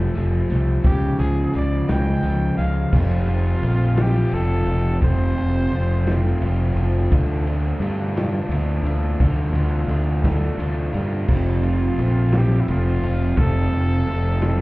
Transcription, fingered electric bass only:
0.16 0.41 F1 medium
0.52 0.76 C2 loud
0.84 1.10 C#2 loud
1.20 1.45 C#2 medium
1.56 1.80 C#2 medium
1.90 2.15 C#2 medium
2.23 2.49 C#2 medium
2.59 2.84 C#2 medium
2.93 3.54 F1 medium
3.63 4.24 A#1 medium
4.33 4.63 F1 medium
4.66 4.97 F1 medium
5.02 5.32 F1 medium
5.37 5.67 F1 medium
5.72 6.32 F1 medium
6.41 6.72 F1 medium
6.76 7.06 F1 medium
7.12 7.72 D2 medium
7.80 8.41 G2 medium
8.49 8.80 D2 medium
8.83 9.14 D2 medium
9.20 9.50 D2 loud
9.53 9.83 D2 loud
9.87 10.48 D2 medium
10.58 10.89 D2 medium
10.95 11.24 G2 medium
11.29 11.89 F1 medium
11.98 12.58 A#1 medium
12.69 12.98 F1 medium
13.03 13.33 F1 medium
13.38 13.67 F1 medium
13.72 14.02 F1 medium
14.07 14.61 F1 medium

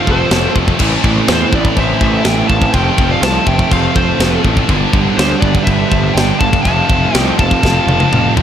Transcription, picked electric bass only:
0.08 0.23 F1 medium
0.31 0.46 F1 loud
0.56 0.71 F1 medium
0.80 0.95 A1 medium
1.04 1.19 A1 medium
1.28 1.44 E2 medium
1.53 1.68 A1 medium
1.77 1.92 A1 medium
2.01 2.17 A1 medium
2.25 2.41 A1 medium
2.50 2.65 A1 medium
2.74 2.89 F1 loud
2.98 3.14 F1 medium
3.22 3.38 C2 loud
3.47 3.62 F1 medium
3.71 3.87 F1 medium
3.96 4.12 F1 medium
4.20 4.35 F1 medium
4.45 4.60 A1 loud
4.69 4.85 G1 loud
4.93 5.09 G1 medium
5.18 5.33 D2 medium
5.42 5.58 G1 medium
5.68 5.83 G1 medium
5.92 6.07 G1 medium
6.15 6.31 G1 medium
6.41 6.56 G1 medium
6.65 6.81 F1 loud
6.90 7.05 F1 medium
7.15 7.30 C2 medium
7.40 7.55 F1 medium
7.63 7.79 F1 medium
7.87 8.03 F1 medium
8.13 8.28 F1 loud
8.37 8.42 F1 medium

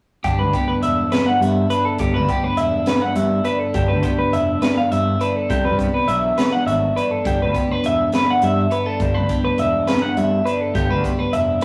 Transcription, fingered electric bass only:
0.25 0.40 G1 medium
0.39 0.62 D2 medium
0.82 1.05 E1 medium
1.40 1.64 G2 medium
2.00 2.15 G1 medium
2.14 2.37 D2 medium
2.57 2.80 E1 medium
3.16 3.39 G2 medium
3.75 3.90 G1 medium
3.89 4.12 D2 medium
4.33 4.56 F1 medium
4.91 5.14 G2 medium
5.50 5.66 C2 medium
5.64 5.87 G2 medium
6.08 6.31 B1 medium
6.66 6.89 G#1 medium
7.26 7.42 G1 medium
7.41 7.63 D2 medium
7.85 8.07 E1 medium
8.42 8.65 G2 medium
9.00 9.18 G1 medium
9.16 9.38 D2 medium
9.59 9.81 E1 medium
10.17 10.39 G2 medium
10.75 10.91 G1 loud
10.90 11.12 D2 medium
11.33 11.56 F1 medium

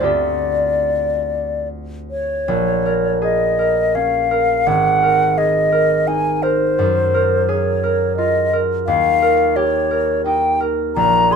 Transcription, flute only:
0.05 1.68 D5 medium
2.11 3.18 C#5 medium
3.24 3.97 D#5 medium
3.95 4.68 F5 medium
4.67 5.39 F#5 medium
5.38 6.09 D#5 medium
6.07 6.44 G#5 medium
6.43 7.51 C5 medium
7.49 8.16 C#5 medium
8.17 8.62 D#5 medium
8.87 9.58 F5 medium
9.56 10.25 C#5 medium
10.26 10.60 G5 medium
10.96 11.34 A#5 medium
11.32 11.36 C6 medium

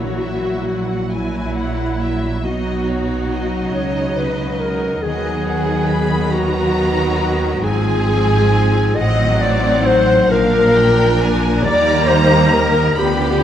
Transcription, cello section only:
0.00 2.43 A#2 soft
2.46 3.75 B2 soft
3.75 5.02 C#3 medium
5.05 7.62 D#3 medium
7.66 8.98 G#2 medium
8.98 10.28 A2 medium
10.30 11.61 A#2 medium
11.63 12.99 D#3 medium
12.99 13.43 D3 medium

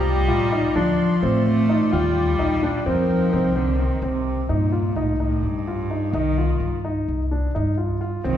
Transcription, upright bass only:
0.00 0.29 C2 medium
0.29 0.66 A1 medium
0.76 0.94 D2 medium
1.23 1.78 A1 medium
1.93 2.40 D#2 medium
2.40 2.76 A#1 medium
2.86 3.04 F2 medium
3.33 3.88 C2 medium
4.02 4.39 C2 medium
4.49 4.87 G2 medium
4.96 5.33 C2 medium
5.43 5.99 G2 medium
6.13 6.51 C2 medium
6.60 6.98 G2 medium
7.08 7.45 C2 medium
7.56 8.11 G2 medium
8.25 8.37 C2 medium

